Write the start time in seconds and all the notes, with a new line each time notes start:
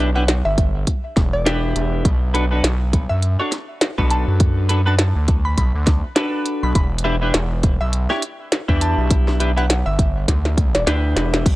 Already playing: B1
0.15 D4 E4 G4 B4 F#5
0.28 snare, closed hi-hat
0.45 G1 E5
0.58 kick, closed hi-hat
0.87 kick, closed hi-hat
1.17 E1, kick, snare, closed hi-hat
1.33 D5
1.46 D4 E4 G4 B4, snare, closed hi-hat
1.76 E1, closed hi-hat
2.05 B1, kick, closed hi-hat
2.34 D4 F#4 A4 B4, closed hi-hat
2.51 D4 F#4 A4 B4
2.64 B1, snare, closed hi-hat
2.93 kick, closed hi-hat
3.09 F#2 E5
3.23 closed hi-hat
3.40 D4 F#4 A4 C#5
3.52 snare, closed hi-hat
3.81 snare, closed hi-hat
3.98 B1 D4 F#4 A4 B4, kick
4.10 A5, closed hi-hat
4.28 F#2
4.40 kick, closed hi-hat
4.69 D4 F#4 A4 B4, closed hi-hat
4.86 D4 F#4 A4 B4 A5
4.99 A5, snare, closed hi-hat
5.16 D2
5.28 kick, closed hi-hat
5.45 B5
5.58 B1 B5, kick, closed hi-hat
5.75 D2
5.87 kick, snare, closed hi-hat
6.16 D4 F#4 A4 B4, snare, closed hi-hat
6.46 closed hi-hat
6.63 B1 B5
6.75 E1 B5, kick, closed hi-hat
6.98 closed hi-hat
7.04 D4 E4 G4 B4
7.21 D4 E4 G4 B4
7.34 E1, snare, closed hi-hat
7.63 kick, closed hi-hat
7.81 B1 E5
7.93 closed hi-hat
8.10 D4 E4 G4 C#5, snare
8.22 closed hi-hat
8.52 snare, closed hi-hat
8.68 E2 D4 E4 G4 B4, kick
8.81 A5, closed hi-hat
8.98 B1
9.11 kick, closed hi-hat
9.28 snare
9.40 D4 E4 G4 B4, closed hi-hat
9.57 D4 E4 G4 B4 F#5, closed hi-hat
9.70 snare, closed hi-hat
9.86 G1 E5
9.99 kick, closed hi-hat
10.28 D2, kick, snare, closed hi-hat
10.45 snare
10.58 kick, closed hi-hat
10.75 D5, snare, closed hi-hat
10.87 D2 D4 E4 G4 B4, snare, closed hi-hat
11.16 E1, snare, closed hi-hat
11.34 snare
11.46 B1, kick, closed hi-hat, crash